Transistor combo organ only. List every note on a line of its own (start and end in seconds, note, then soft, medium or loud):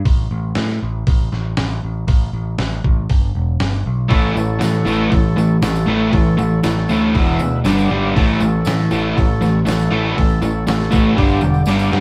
4.09 4.32 E4 loud
4.09 4.33 A4 loud
4.09 4.33 C#5 loud
4.38 4.59 E4 medium
4.38 4.59 A4 medium
4.38 4.59 C#5 medium
4.63 5.07 E4 medium
4.63 5.07 A4 medium
4.63 5.07 C#5 medium
5.12 5.57 E4 medium
5.12 5.57 A4 medium
5.12 5.58 C#5 medium
5.63 6.07 E4 medium
5.63 6.08 A4 medium
5.63 6.07 C#5 medium
6.12 6.35 E4 loud
6.12 6.36 A4 medium
6.12 6.35 C#5 loud
6.36 6.60 E4 medium
6.36 6.60 A4 medium
6.36 6.60 C#5 medium
6.63 7.08 E4 medium
6.63 7.08 A4 medium
6.63 7.08 C#5 medium
7.14 7.59 E4 medium
7.14 7.59 B4 medium
7.14 7.60 E5 medium
7.65 8.09 D4 medium
7.65 8.10 G4 medium
7.65 8.10 D5 medium
8.15 8.38 E4 loud
8.15 8.38 A4 medium
8.15 8.38 C#5 loud
8.39 8.60 E4 medium
8.39 8.61 A4 medium
8.39 8.61 C#5 medium
8.61 9.08 E4 medium
8.61 9.08 A4 medium
8.61 9.09 C#5 medium
9.14 9.60 E4 medium
9.14 9.60 A4 medium
9.14 9.60 C#5 medium
9.66 10.11 E4 medium
9.66 10.11 A4 medium
9.66 10.11 C#5 medium
10.17 10.39 E4 loud
10.17 10.40 A4 medium
10.17 10.40 E5 loud
10.41 10.64 E4 medium
10.41 10.65 A4 medium
10.41 10.65 C#5 medium
10.68 11.12 E4 medium
10.68 11.12 A4 medium
10.68 11.13 C#5 medium
11.18 11.62 D4 medium
11.18 11.62 G4 medium
11.18 11.63 D5 medium
11.66 12.00 D4 medium
11.66 12.00 G4 medium
11.66 12.00 D5 medium